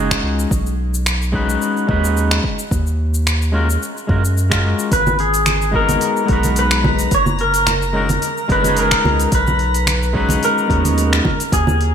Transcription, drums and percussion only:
0.11 finger snap, kick, shaker
0.39 shaker
0.51 kick, shaker
0.66 shaker
0.94 shaker
1.06 finger snap, shaker
1.22 shaker
1.34 kick
1.50 shaker
1.62 shaker
1.77 shaker
1.89 kick
2.04 shaker
2.17 shaker
2.31 finger snap, shaker
2.44 kick
2.59 shaker
2.71 kick, shaker
2.87 shaker
3.14 shaker
3.27 finger snap, shaker
3.42 shaker
3.70 shaker
3.83 shaker
3.97 shaker
4.09 kick
4.25 shaker
4.38 shaker
4.51 finger snap, kick, shaker
4.79 shaker
4.92 kick, open hi-hat, shaker
5.07 high conga, shaker
5.19 open hi-hat
5.34 open hi-hat, shaker
5.46 finger snap, open hi-hat, high conga, shaker
5.62 shaker
5.74 kick
5.89 open hi-hat, high conga, shaker
6.01 open hi-hat, shaker
6.17 shaker
6.28 kick, open hi-hat
6.43 open hi-hat, high conga, shaker
6.56 open hi-hat, shaker
6.71 finger snap, shaker
6.84 kick, high conga
6.99 open hi-hat, shaker
7.11 kick, open hi-hat, shaker
7.26 high conga, shaker
7.39 open hi-hat
7.54 open hi-hat, shaker
7.67 finger snap, open hi-hat, high conga, shaker
7.82 shaker
8.09 open hi-hat, high conga, shaker
8.22 open hi-hat, shaker
8.37 shaker
8.49 kick, open hi-hat
8.64 open hi-hat, high conga, shaker
8.77 open hi-hat, shaker
8.91 finger snap, kick, shaker
9.05 high conga
9.20 open hi-hat, shaker
9.32 kick, open hi-hat, shaker
9.47 high conga, shaker
9.59 open hi-hat
9.74 open hi-hat, shaker
9.87 finger snap, open hi-hat, high conga, shaker
10.03 shaker
10.15 kick
10.29 open hi-hat, high conga, shaker
10.43 open hi-hat, shaker
10.58 shaker
10.70 kick, open hi-hat
10.85 open hi-hat, high conga, shaker
10.98 open hi-hat, shaker
11.13 finger snap, shaker
11.25 kick, high conga
11.40 open hi-hat, shaker
11.52 kick, open hi-hat, shaker
11.67 high conga, shaker
11.81 open hi-hat

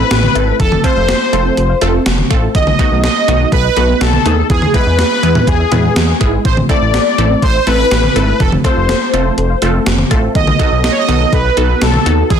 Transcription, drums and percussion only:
0.11 snare, closed hi-hat
0.23 mid tom
0.35 closed hi-hat
0.60 kick, closed hi-hat
0.72 mid tom
0.84 kick, closed hi-hat
1.09 snare, closed hi-hat
1.33 closed hi-hat
1.57 closed hi-hat
1.81 closed hi-hat
2.06 snare, closed hi-hat
2.18 mid tom
2.31 kick, closed hi-hat
2.55 kick, closed hi-hat
2.67 mid tom
2.79 kick, closed hi-hat
3.04 snare, closed hi-hat
3.28 closed hi-hat
3.52 kick, closed hi-hat
3.77 closed hi-hat
4.01 snare, closed hi-hat
4.13 mid tom
4.26 closed hi-hat
4.50 kick, closed hi-hat
4.62 mid tom
4.74 kick, closed hi-hat
4.99 snare, closed hi-hat
5.23 closed hi-hat
5.35 mid tom
5.47 kick, closed hi-hat
5.72 closed hi-hat, mid tom
5.96 snare, closed hi-hat
6.21 kick, closed hi-hat
6.45 kick, closed hi-hat
6.57 mid tom
6.69 kick, closed hi-hat
6.94 snare, closed hi-hat
7.19 closed hi-hat
7.42 kick, closed hi-hat
7.67 closed hi-hat
7.91 snare, closed hi-hat
8.03 mid tom
8.16 closed hi-hat
8.40 kick, closed hi-hat
8.52 mid tom
8.64 kick, closed hi-hat
8.89 snare, closed hi-hat
9.14 closed hi-hat
9.38 closed hi-hat
9.62 closed hi-hat
9.86 snare, closed hi-hat
9.98 mid tom
10.11 kick, closed hi-hat
10.35 kick, closed hi-hat
10.47 mid tom
10.59 kick, closed hi-hat
10.84 snare, closed hi-hat
11.09 closed hi-hat
11.33 kick, closed hi-hat
11.57 closed hi-hat
11.81 snare, closed hi-hat
11.94 mid tom
12.06 closed hi-hat
12.30 kick, closed hi-hat

